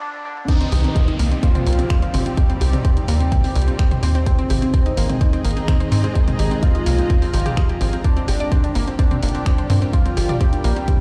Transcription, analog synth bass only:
0.72 C2
1.19 C2
1.67 C2
2.14 G1
2.61 C2
3.08 D#2
3.56 C2
4.03 D#2
4.50 G#1
4.97 G#1
5.45 G#1
5.92 G#2
6.39 G#1
6.86 C2
7.34 G#1
7.81 G#1
8.28 G1
8.75 G1
9.23 G1
9.70 G2
10.17 G1
10.64 A#1

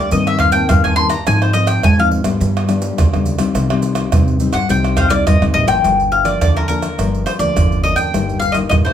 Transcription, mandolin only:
Already playing: D5
0.12 D#5
0.27 E5
0.40 F5
0.52 G5
0.69 F5
0.84 G#5
0.96 C6
1.09 A#5
1.27 G#5
1.42 C5
1.53 D#5
1.67 G5
1.84 G#5
1.99 F5
4.54 F#5
4.70 G5
4.97 C5 F5
5.10 D5
5.27 D#5
5.54 D#5
5.68 G5
6.12 F5
6.25 D5
6.41 D5
6.56 A#4
6.68 A#4
7.26 C5
7.39 D5
7.83 D#5
7.96 G5
8.40 F5
8.52 D#5
8.69 D#5
8.85 C5

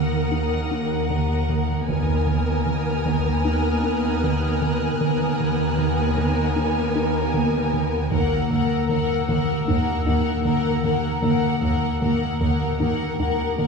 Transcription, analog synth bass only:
Already playing: D#3
0.32 D#4
0.71 D#4
1.10 D#3
1.49 D#3
1.89 D#3
2.27 D#3
2.66 D#3
3.06 D#3
3.45 D#4
3.83 D#4
4.24 D#3
4.62 D#3
5.01 D#3
5.40 D#3
5.78 D#3
6.17 D#3
6.56 D#4
6.96 D#4
7.34 D#3
7.74 D#3
8.11 D#3
8.50 D#3
8.89 D#3
9.29 D#3
9.68 D#4
10.06 D#4
10.45 D#3
10.84 D#3
11.22 D#3
11.61 D#3
12.02 D#3
12.41 D#3
12.80 D#4
13.20 D#4
13.58 D#3

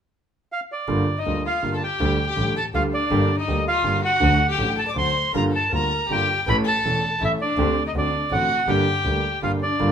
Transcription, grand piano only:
0.88 G1 G2 D3 G3 A#3 F4
1.26 D2 D3 G3 A#3 F4
1.62 G1 G2 D3 G3 A#3 F4
2.00 D2 D3 G3 A3 G4
2.36 A1 A2 D3 G3 A3 G4
2.73 D2 D3 G3 A3 G4
3.10 G1 G2 D3 G3 A#3 G4
3.47 D2 D3 G3 A#3 G4
3.84 G1 G2 D3 G3 A#3 G4
4.20 D2 D3 F#3 A3 F#4
4.58 A1 A2 D3 F#3 A3 F#4
4.96 D2 D3 F#3 A3 F#4
5.34 G1 G2 D3 G3 A#3 F4
5.72 D2 D3 G3 A#3 F4
6.10 G1 G2 D3 G3 A#3 F4
6.48 A1 A2 E3 A3 C#4 A4
6.85 E1 E2 E3 A3 C#4 A4
7.22 A1 A2 E3 A3 C#4 A4
7.58 D2 D3 A3 C4 G4
7.95 D2 D3 A3 C4 F#4
8.31 A1 A2 D3 A3 C4 F#4
8.68 G1 G2 D3 G3 A#3 G4
9.05 D2 D3 G3 A#3 G4
9.42 G1 G2 D3 G3 A#3 G4
9.80 G1 G2 D3 G3 A#3 F4

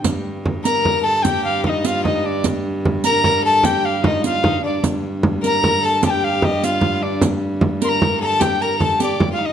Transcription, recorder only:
0.64 A#5
1.02 A5
1.22 G5
1.44 F5
1.65 D#5 F5
1.85 F5
2.04 D#5
2.26 D5
3.04 A#5
3.45 A5
3.64 G5
3.85 F5
4.06 D#5
4.25 F5
4.65 D5
5.46 A#5
5.84 A5
6.05 A5
6.10 G5
6.24 F5
6.44 D#5
6.64 F5
7.02 D5
7.84 C6
7.88 A#5
8.23 A5 A#5
8.41 G5
8.61 A#5
8.81 A5
9.02 D5
9.32 F5
9.42 D#5 F5

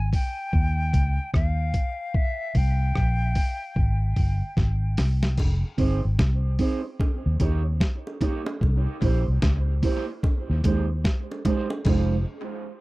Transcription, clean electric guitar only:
5.78 C4 D#4 G#4 C5
6.59 C4 D#4 G#4 C5
6.84 muted clean electric guitar stroke
7.40 A#3 D#4 G4 C#5
8.21 A#3 D#4 G4 C#5
9.02 A#3 E4 G4 C5
9.83 A#3 E4 G4 C5
10.08 muted clean electric guitar stroke
10.49 muted clean electric guitar stroke
10.65 G#3 D#4 G4 C5
11.46 G#3 D#4 G4 C5
11.87 G#3 D#4 F4 C5

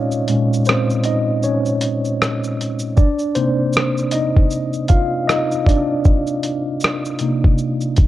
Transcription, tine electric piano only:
Already playing: A#2 G#3 C#4 D#4 F4 C#5 D5 D#5 F5
0.29 A#2 G#3 C#4
0.67 C4 C5
1.05 D#4 D#5
1.44 C#4 C#5
2.97 D4 D5
3.35 C3 A#3 C4 D#4 C5
4.12 D#4 D#5
4.89 F4 F5
5.28 D#4 D#5
5.66 D4 D5
7.21 C3 A#3 D#4

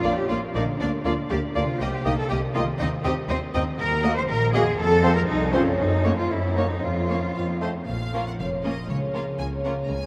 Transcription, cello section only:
Already playing: F4
0.16 G4
0.29 F4
0.54 D#4
0.79 D4
1.05 F4
1.30 G4
1.54 F4
1.79 G4
2.18 A4
2.29 G4
2.54 F4
2.79 D#4
3.04 G4
3.29 C5
3.78 A#4
4.16 C5
4.28 A#4
4.53 G#4
4.79 A4
5.16 A#4
5.28 D#4
5.53 C#4
5.78 D#4
6.17 F4
6.29 E4
6.56 D#4
6.82 F4
7.87 A#2
8.39 F2
8.89 C#3
9.38 C#3
9.89 C#3

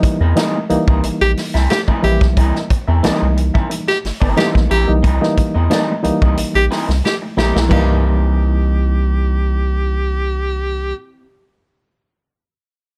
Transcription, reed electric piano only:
Already playing: E3 G3 A#3 D#4
0.36 E3 G3 A#3 D#4
0.69 E3 G3 A#3 D#4
2.03 E3 G3 A#3 E4
3.03 E3 G3 A#3 D#4
4.37 E3 G3 A#3 D#4
4.87 E3 G3 A#3 D#4
5.21 E3 G3 A#3 D#4
5.70 E3 G3 A#3 D#4
6.03 E3 G3 A#3 D#4
7.37 E3 G3 A#3 E4
7.69 E3 G3 A#3 D#4

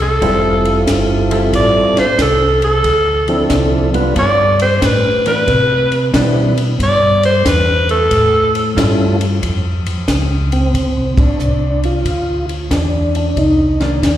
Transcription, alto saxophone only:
0.02 A4
1.55 D5
1.99 C5
2.22 A4
2.64 A4
4.19 D5
4.62 C5
4.85 B4
5.27 B4
6.83 D5
7.25 C5
7.47 B4
7.91 A4

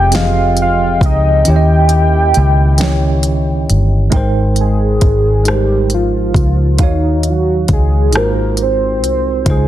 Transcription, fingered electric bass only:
Already playing: F1
1.02 C#2
1.48 D#2
2.37 C#2
3.70 G1
4.13 G#1
5.03 G#1
6.36 C#2
6.80 D#2
7.70 C#2
8.14 G#1
9.03 C2
9.47 C#2

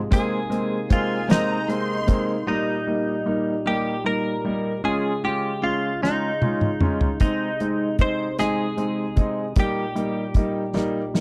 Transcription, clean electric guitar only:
0.13 G#4
0.93 F4
1.31 D#4
2.48 D#4
3.67 G4
4.06 A#4
4.85 G#4
5.25 G4
5.64 F4
6.03 D#4
7.21 D#4
8.01 C5
8.39 G#4
9.60 G4

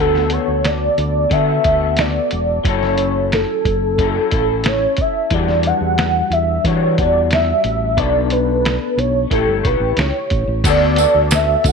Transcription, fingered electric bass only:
Already playing: D2
0.48 D2
0.98 D2
1.31 D3
1.65 D2
2.32 E1
2.65 F#1
3.65 F#1
4.32 A1
5.31 E2
5.81 E2
6.30 E2
6.64 E3
6.98 E2
7.64 A1
7.97 B1
8.97 B1
9.31 A1
9.47 G1
9.65 B1
9.80 A1
9.97 C#2
10.31 A1
10.47 A1
10.64 D2
11.14 D2
11.64 D2

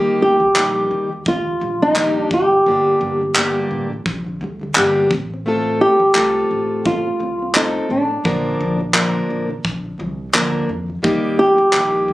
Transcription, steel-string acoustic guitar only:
Already playing: D#3 G3 A#3 D#4 G4
0.40 D#3 G3
0.55 D#3 G3 A#3 D#4 G4
1.09 D#3 G3
1.44 D#3 G3
1.60 D#3 G3
1.96 D#3 G3 A#3 D#4 G4
2.31 G2 D3 G3
2.49 G2 D3 G3
2.66 G2 D3 G3 A#3 D4 G4
3.20 G2 D3 G3
3.36 G2 D3 G3 A#3 D4 G4
3.90 G2 D3 G3
4.25 G2 D3 G3
4.41 G2 D3 G3
4.59 G2 D3 G3
4.75 G2 D3 G3 A#3 D4 G4
5.11 A3 C4
5.30 A3 C4
5.46 A3 C4 F4 A4
5.99 A3
6.15 A3 C4 F4 A4
7.04 A3 C4
7.20 A3 C4
7.39 A3 C4
7.54 A3 C4 F4 A4
7.89 A3
8.08 A3 C4
8.24 A#2 D3 F3 A#3 D4 A#4
8.77 A#2 D3 F3
8.92 A#2 D3 F3 A#3 D4 A#4
9.47 A#2 D3 F3
9.82 A#2 D3 F3
9.98 A#2 D3 F3
10.33 A#2 D3 F3 A#3 D4 A#4
10.67 A#2 D3
10.86 A#2 D3 F3
11.02 D#3 G3 A#3 D#4 G4
11.56 D#3
11.72 D#3 G3 A#3 D#4 G4

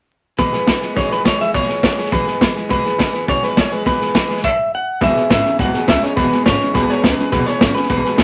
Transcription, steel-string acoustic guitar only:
0.38 E2 B2 E3 G#3 B3 G#4
0.53 E3 G#3 B3 G#4
0.66 E3 G#3 B3 G#4
0.81 E3 G#3 B3 G#4
0.96 E2 B2 E3 G#3 B3 G#4
1.10 E3 G#3 B3 G#4
1.25 E3 G#3 B3 G#4
1.39 E3 G#3 B3 G#4
1.53 E2 B2 E3 G#3 B3 G#4
1.69 E3 G#3 B3 G#4
1.83 E3 G#3 B3 G#4
1.98 E3 G#3 B3 G#4
2.12 E2 B2 E3 G#3 B3 G#4
2.26 E3 G#3 B3 G#4
2.40 E3 G#3 B3 G#4
2.55 E3 G#3 B3 G#4
2.70 E2 B2 E3 G#3 B3 G#4
2.85 E3 G#3 B3 G#4
2.99 E3 G#3 B3 G#4
3.13 E3 G#3 B3 G#4
3.28 E2 B2 E3 G#3 B3 G#4
3.43 E3 G#3 B3 G#4
3.56 E3 G#3 B3 G#4
3.72 E3 G#3 B3 G#4
3.85 E2 B2 E3 G#3 B3 G#4
3.99 E3 G#3 B3 G#4
4.14 E3 G#3 B3 G#4
4.28 E3 G#3 B3 G#4
5.01 E2 B2 E3 G#3 B3 G#4
5.15 E3 G#3 B3 G#4
5.29 E3 G#3 B3 G#4
5.44 E3 G#3 B3 G#4
5.59 E2 B2 E3 G#3 B3 G#4
5.74 E3 G#3 B3 G#4
5.88 E3 G#3 B3 G#4
6.03 E3 G#3 B3 G#4
6.17 E2 B2 E3 G#3 B3 G#4
6.32 E3 G#3 B3 G#4
6.46 E3 G#3 B3 G#4
6.60 E3 G#3 B3 G#4
6.74 E2 B2 E3 G#3 B3 G#4
6.88 E3 G#3 B3 G#4
7.03 E3 G#3 B3 G#4
7.17 E3 G#3 B3 G#4
7.32 E2 B2 E3 G#3 B3 G#4
7.46 E3 G#3 B3 G#4
7.62 E3 G#3 B3 G#4
7.75 E3 G#3 B3 G#4
7.89 E2 B2 E3 G#3 B3 G#4
8.04 E3 G#3 B3 G#4
8.18 E3 G#3 B3 G#4

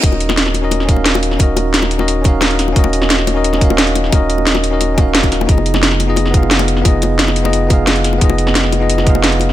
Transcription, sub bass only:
0.03 D#1
1.40 D#1
2.76 D#1
4.12 D#1
5.32 D#1
5.49 F1
6.85 F1
8.21 F1

